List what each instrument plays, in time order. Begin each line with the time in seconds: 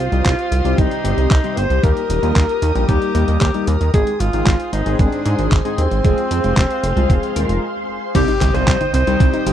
Already playing: alto saxophone F4, string machine G4 C5 C6 D#6
0.12 analog synth bass C2, analog polysynth C3 G3 C4 D#4 F4, closed hi-hat
0.25 analog synth bass C2, kick, clap, closed hi-hat
0.39 closed hi-hat
0.52 analog synth bass C2, closed hi-hat
0.65 analog synth bass C2, analog polysynth C3 G3 C4 D#4 G4, closed hi-hat
0.78 analog synth bass C2, alto saxophone D#4, kick, closed hi-hat
0.91 closed hi-hat
1.04 analog synth bass G1, analog polysynth C3 G3 C4 D#4 G4, closed hi-hat
1.17 analog synth bass C2, closed hi-hat
1.31 analog synth bass C2, alto saxophone D#4, kick, clap, closed hi-hat
1.44 analog polysynth C3 G3 C4 D#4 G4, closed hi-hat
1.57 analog synth bass G1, alto saxophone C5, closed hi-hat
1.70 analog synth bass C2, closed hi-hat
1.83 analog synth bass D#2, analog polysynth G3 A#3 D#4 G4, alto saxophone A#4, string machine A#4 A#5, kick, closed hi-hat
1.97 closed hi-hat
2.10 analog synth bass D#1, closed hi-hat
2.23 analog synth bass D#2, analog polysynth G3 A#3 D#4 F4, closed hi-hat
2.36 analog synth bass D#2, kick, clap, closed hi-hat
2.49 closed hi-hat
2.62 analog synth bass D#2, closed hi-hat
2.75 analog synth bass A#1, analog polysynth G3 A#3 D#4 G4, closed hi-hat
2.89 analog synth bass D#2, alto saxophone G4, kick, closed hi-hat
3.02 closed hi-hat
3.15 analog synth bass D#2, analog polysynth G3 A#3 D#4 G4, closed hi-hat
3.28 analog synth bass D#2, closed hi-hat
3.41 analog synth bass D#2, alto saxophone G4, kick, clap, closed hi-hat
3.54 analog polysynth G3 A#3 D#4 G4, closed hi-hat
3.67 analog synth bass D#2, alto saxophone A#4, closed hi-hat
3.81 analog synth bass D#2, closed hi-hat
3.94 analog synth bass G#1, analog polysynth G#2 G#3 C4 D#4 G#4, alto saxophone G#4, string machine G#4 C5 C6, kick, closed hi-hat
4.07 closed hi-hat
4.20 analog synth bass G#1, alto saxophone F4, closed hi-hat
4.33 analog synth bass G#1, analog polysynth G#2 G#3 C4 D#4 F4, closed hi-hat
4.47 analog synth bass G#1, kick, clap, closed hi-hat
4.60 closed hi-hat
4.73 analog synth bass G#1, alto saxophone D#4, closed hi-hat
4.86 analog synth bass G#1, analog polysynth G#2 G#3 C4 D#4 G#4, closed hi-hat
4.99 analog synth bass G#1, alto saxophone D4, kick, closed hi-hat
5.12 closed hi-hat
5.25 analog polysynth G#2 G#3 C4 D#4 G#4, analog synth bass G#2, closed hi-hat
5.39 analog synth bass G#1, closed hi-hat
5.52 analog synth bass G#1, kick, clap, closed hi-hat
5.65 analog polysynth G#2 G#3 C4 D#4 G#4, closed hi-hat
5.78 analog synth bass D#2, alto saxophone C4, closed hi-hat
5.91 analog synth bass G#1, closed hi-hat
6.04 analog synth bass F1, analog polysynth G#3 C4 F4 G#4, string machine C5 F5, kick, closed hi-hat
6.18 closed hi-hat
6.31 analog synth bass F2, closed hi-hat
6.44 analog synth bass F1, analog polysynth G#3 C4 F4 G4, closed hi-hat
6.57 analog synth bass F1, kick, clap, closed hi-hat
6.70 closed hi-hat
6.83 analog synth bass F1, closed hi-hat
6.96 analog synth bass C2, analog polysynth G#3 C4 F4 G#4, closed hi-hat
7.10 analog synth bass F1, kick, closed hi-hat
7.23 closed hi-hat
7.36 analog synth bass D#1, analog polysynth G#3 C4 F4 A#4, closed hi-hat
7.49 analog synth bass F1, analog polysynth G#3 C4 F4 A#4, closed hi-hat
8.15 analog synth bass C2, analog polysynth C3 G3 C4 D#4 G4, synth arpeggio sound C4, alto saxophone G4, string machine C5 D#5 G5 D#6, kick, closed hi-hat, crash, impact
8.28 synth arpeggio sound D#4, closed hi-hat
8.41 analog synth bass C2, synth arpeggio sound G4, clap, closed hi-hat, high tom
8.54 analog synth bass C2, analog polysynth C3 G3 C4 D#4 F4, synth arpeggio sound C5, alto saxophone C5, closed hi-hat
8.67 analog synth bass C2, synth arpeggio sound G4, kick, clap, closed hi-hat
8.81 synth arpeggio sound D#4, closed hi-hat, high tom
8.94 analog synth bass C2, synth arpeggio sound C4, alto saxophone C5, closed hi-hat
9.07 analog synth bass C2, analog polysynth C3 G3 C4 D#4 G4, synth arpeggio sound D#4, closed hi-hat
9.20 analog synth bass C2, synth arpeggio sound C4, kick, closed hi-hat
9.34 synth arpeggio sound D#4, closed hi-hat
9.46 analog synth bass G1, analog polysynth C3 G3 C4 D#4 G4, synth arpeggio sound G4, closed hi-hat